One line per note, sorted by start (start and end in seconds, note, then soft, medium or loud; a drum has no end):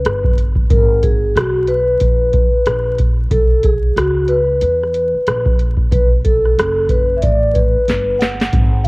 0.00 0.34 B4 medium
0.05 0.67 G1 medium
0.05 cross-stick medium
0.05 closed hi-hat medium
0.24 kick medium
0.38 closed hi-hat medium
0.55 kick medium
0.70 1.32 G#1 medium
0.70 1.04 A#4 loud
0.70 kick loud
0.70 closed hi-hat medium
1.03 1.33 G#4 medium
1.03 kick medium
1.03 closed hi-hat medium
1.35 1.97 B1 medium
1.35 1.69 F#4 medium
1.35 cross-stick loud
1.35 closed hi-hat medium
1.67 2.94 B4 medium
1.67 closed hi-hat medium
2.00 2.50 A#1 medium
2.00 kick medium
2.00 closed hi-hat loud
2.33 kick medium
2.33 closed hi-hat medium
2.53 muted upright bass stroke soft
2.66 3.28 A#1 medium
2.66 cross-stick medium
2.66 closed hi-hat medium
2.98 kick medium
2.98 closed hi-hat medium
3.31 3.93 B1 loud
3.31 3.65 A4 medium
3.31 kick loud
3.31 closed hi-hat medium
3.63 3.94 G#4 medium
3.63 kick medium
3.63 closed hi-hat medium
3.96 4.58 C#2 medium
3.96 4.30 F#4 medium
3.96 cross-stick loud
3.96 closed hi-hat loud
4.28 5.55 B4 medium
4.28 closed hi-hat medium
4.61 5.11 E2 medium
4.61 closed hi-hat medium
4.83 cross-stick soft
4.94 closed hi-hat medium
5.14 muted upright bass stroke soft
5.27 5.89 A#1 medium
5.27 cross-stick loud
5.27 closed hi-hat medium
5.46 kick medium
5.59 closed hi-hat medium
5.77 kick medium
5.91 6.54 B1 loud
5.91 6.06 B4 medium
5.91 kick loud
5.91 closed hi-hat medium
6.25 6.92 A4 medium
6.25 kick medium
6.25 closed hi-hat medium
6.45 cross-stick soft
6.58 7.19 F#1 medium
6.58 cross-stick loud
6.58 closed hi-hat loud
6.89 7.17 B4 medium
6.89 kick medium
6.89 closed hi-hat medium
7.17 7.22 E5 medium
7.22 7.72 A1 medium
7.22 7.56 D5 medium
7.22 kick medium
7.22 closed hi-hat loud
7.54 8.22 B4 medium
7.54 kick medium
7.54 closed hi-hat medium
7.75 muted upright bass stroke soft
7.88 8.50 G1 medium
7.88 snare soft
7.88 closed hi-hat medium
8.19 8.87 F#5 medium
8.19 snare medium
8.19 closed hi-hat medium
8.40 snare medium
8.40 closed hi-hat soft
8.53 8.88 G#1 loud
8.53 kick medium
8.53 closed hi-hat medium
8.84 8.88 F5 loud
8.84 closed hi-hat medium